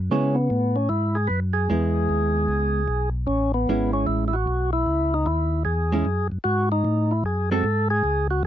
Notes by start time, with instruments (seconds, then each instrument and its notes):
0.11 tonewheel organ C#3 C#4, hollow-body jazz guitar G#3 B3 E4
0.35 tonewheel organ B3
0.50 tonewheel organ A2
0.76 tonewheel organ C#4
0.89 tonewheel organ G#2 E4
1.15 tonewheel organ G#4
1.27 tonewheel organ F#2 B4
1.53 tonewheel organ G#4
1.70 tonewheel organ E2, hollow-body jazz guitar G#3 B3 E4
2.09 tonewheel organ D#2
2.48 tonewheel organ C#2
2.88 tonewheel organ B1
3.27 tonewheel organ A1 C#4
3.54 tonewheel organ B3
3.67 tonewheel organ G#1, hollow-body jazz guitar G#3 C#4 E4
3.93 tonewheel organ C#4
4.07 tonewheel organ A1 E4
4.28 tonewheel organ E4
4.33 tonewheel organ F#4
4.47 tonewheel organ B1
4.73 tonewheel organ E4
4.86 tonewheel organ C#2
5.14 tonewheel organ D#4
5.26 tonewheel organ D#2 E4
5.65 tonewheel organ E2 G#4
5.92 hollow-body jazz guitar G#3 C#4 E4
6.05 tonewheel organ F#2
6.32 tonewheel organ F#2
6.44 tonewheel organ G#2 F#4
6.72 tonewheel organ D#4
6.85 tonewheel organ A2
7.11 tonewheel organ E4
7.24 tonewheel organ F#2 G#4
7.51 hollow-body jazz guitar G#3 C4 F#4 A4, tonewheel organ A4
7.64 tonewheel organ G#2
7.90 tonewheel organ G#4
8.04 tonewheel organ C#2
8.31 tonewheel organ F#4
8.43 tonewheel organ E2